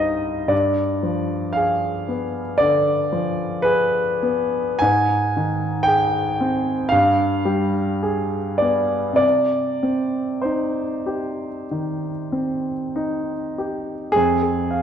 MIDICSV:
0, 0, Header, 1, 2, 480
1, 0, Start_track
1, 0, Key_signature, -3, "minor"
1, 0, Tempo, 1048951
1, 236, Time_signature, 4, 2, 24, 8
1, 1668, Tempo, 1178782
1, 2148, Tempo, 1056338
1, 3108, Tempo, 1109057
1, 3588, Tempo, 1181102
1, 4068, Tempo, 1244813
1, 5508, Tempo, 1185771
1, 5988, Tempo, 1061947
1, 6294, End_track
2, 0, Start_track
2, 0, Title_t, "Grand piano"
2, 0, Program_c, 0, 0
2, 0, Control_c, 0, 64, 127
2, 0, Note_on_c, 0, 43, 38
2, 0, Note_on_c, 0, 55, 35
2, 0, Note_on_c, 0, 63, 38
2, 0, Note_on_c, 0, 72, 41
2, 0, Note_on_c, 0, 75, 65
2, 0, Note_on_c, 0, 77, 72
2, 134, Note_off_c, 0, 72, 0
2, 219, Note_off_c, 0, 43, 0
2, 219, Note_on_c, 0, 43, 47
2, 221, Note_on_c, 0, 74, 62
2, 226, Note_off_c, 0, 75, 0
2, 234, Note_off_c, 0, 63, 0
2, 242, Control_c, 0, 64, 0
2, 244, Note_off_c, 0, 55, 0
2, 247, Note_off_c, 0, 77, 0
2, 327, Control_c, 0, 64, 127
2, 471, Note_on_c, 0, 53, 34
2, 698, Note_on_c, 0, 77, 64
2, 710, Note_off_c, 0, 74, 0
2, 716, Note_on_c, 0, 68, 39
2, 859, Note_off_c, 0, 53, 0
2, 953, Note_on_c, 0, 59, 37
2, 1102, Note_off_c, 0, 68, 0
2, 1170, Note_off_c, 0, 43, 0
2, 1179, Note_on_c, 0, 74, 79
2, 1188, Note_off_c, 0, 77, 0
2, 1192, Note_on_c, 0, 50, 42
2, 1336, Note_off_c, 0, 59, 0
2, 1430, Note_on_c, 0, 53, 38
2, 1569, Note_off_c, 0, 50, 0
2, 1658, Note_on_c, 0, 71, 73
2, 1659, Note_off_c, 0, 74, 0
2, 1669, Note_on_c, 0, 68, 46
2, 1805, Note_off_c, 0, 53, 0
2, 1905, Note_on_c, 0, 59, 44
2, 2054, Note_off_c, 0, 68, 0
2, 2133, Note_on_c, 0, 80, 78
2, 2144, Note_off_c, 0, 71, 0
2, 2145, Note_on_c, 0, 44, 54
2, 2148, Note_off_c, 0, 59, 0
2, 2155, Control_c, 0, 64, 0
2, 2238, Control_c, 0, 64, 127
2, 2395, Note_on_c, 0, 51, 42
2, 2605, Note_on_c, 0, 79, 82
2, 2622, Note_off_c, 0, 80, 0
2, 2625, Note_on_c, 0, 68, 44
2, 2774, Note_off_c, 0, 51, 0
2, 2867, Note_on_c, 0, 60, 43
2, 3010, Note_off_c, 0, 68, 0
2, 3086, Note_on_c, 0, 77, 82
2, 3089, Note_off_c, 0, 44, 0
2, 3096, Note_off_c, 0, 79, 0
2, 3100, Note_on_c, 0, 43, 56
2, 3108, Note_off_c, 0, 60, 0
2, 3117, Control_c, 0, 64, 0
2, 3179, Control_c, 0, 64, 127
2, 3332, Note_on_c, 0, 55, 43
2, 3581, Note_on_c, 0, 68, 44
2, 3724, Note_off_c, 0, 55, 0
2, 3805, Note_on_c, 0, 74, 64
2, 3814, Note_off_c, 0, 77, 0
2, 3820, Note_on_c, 0, 59, 38
2, 3966, Note_off_c, 0, 68, 0
2, 4028, Note_on_c, 0, 48, 45
2, 4035, Note_off_c, 0, 74, 0
2, 4041, Note_on_c, 0, 74, 72
2, 4049, Note_off_c, 0, 43, 0
2, 4067, Note_off_c, 0, 59, 0
2, 4077, Control_c, 0, 64, 0
2, 4143, Control_c, 0, 64, 127
2, 4300, Note_on_c, 0, 60, 34
2, 4526, Note_on_c, 0, 72, 43
2, 4533, Note_off_c, 0, 74, 0
2, 4539, Note_on_c, 0, 63, 35
2, 4688, Note_off_c, 0, 60, 0
2, 4776, Note_on_c, 0, 67, 35
2, 4931, Note_off_c, 0, 63, 0
2, 4997, Note_off_c, 0, 48, 0
2, 5027, Note_on_c, 0, 51, 35
2, 5171, Note_off_c, 0, 67, 0
2, 5262, Note_on_c, 0, 60, 33
2, 5413, Note_off_c, 0, 51, 0
2, 5506, Note_on_c, 0, 63, 38
2, 5652, Note_off_c, 0, 60, 0
2, 5747, Note_off_c, 0, 72, 0
2, 5760, Note_on_c, 0, 67, 33
2, 5900, Note_off_c, 0, 63, 0
2, 5977, Note_on_c, 0, 68, 79
2, 5991, Note_off_c, 0, 67, 0
2, 5993, Note_on_c, 0, 41, 53
2, 5998, Control_c, 0, 64, 0
2, 6078, Control_c, 0, 64, 127
2, 6105, Note_off_c, 0, 68, 0
2, 6112, Note_on_c, 0, 68, 41
2, 6240, Note_on_c, 0, 77, 40
2, 6294, Note_off_c, 0, 41, 0
2, 6294, Note_off_c, 0, 68, 0
2, 6294, Note_off_c, 0, 77, 0
2, 6294, End_track
0, 0, End_of_file